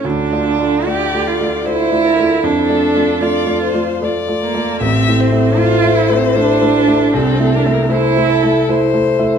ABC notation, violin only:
X:1
M:3/4
L:1/8
Q:1/4=76
K:Dm
V:1 name="Violin"
z2 d2 c B | A2 d c d2 | e c4- c | A B c A c2 |]